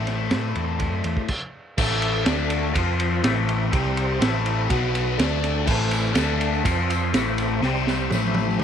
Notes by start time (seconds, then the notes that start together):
Already playing: A1 A2 A3 C4 E4 A4 C5 D5 C6
0.07 snare, ride
0.31 A2, snare, ride
0.55 E2, ride
0.80 kick, ride
0.92 F#2
1.04 E2, ride
1.17 kick
1.28 kick, crash
1.77 A1 A2 E3 A3 C4 E4 A4 E5 A5, kick, crash
2.02 ride
2.25 D2 D3 A3 D4, snare, ride
2.50 ride
2.73 F2 F3 C4 F4 C5 C6, kick, ride
2.78 F4
3.00 ride
3.23 A1 A2 E3 A3 E4 E5, snare, ride
3.49 ride
3.72 C2 C3 G3 C4 G4 C6, kick, ride
3.97 ride
4.20 A1 A2 E3 A3 E4 E5, snare, ride
4.46 ride
4.68 B1 B2 F#3 B3 F#4 B4 B5, kick, ride
4.95 ride
5.16 D2 D3 A3 D4 A4 A5, snare, ride
5.21 D4
5.44 snare, ride
5.66 A1 A2 E3 A3 C4 C5, kick, tambourine, crash
5.91 ride, tambourine
6.05 tambourine
6.14 D2 D3 A3 D4 A5, snare, ride, tambourine
6.41 ride
6.55 tambourine
6.63 F2 F3 C4 F4 C5 C6, kick, ride, tambourine
6.90 ride, tambourine
7.12 A1 A2 E3 A3 E4 C5 E5, snare, ride, tambourine
7.38 ride, tambourine
7.62 C2 C3 G3 C4 G4 C6, snare, tambourine
7.76 tambourine
7.87 snare, tambourine
8.10 A1 A2 E3 A3 E4 E5, high tom, tambourine
8.35 high tom, tambourine
8.50 tambourine
8.60 C2 G4, mid tom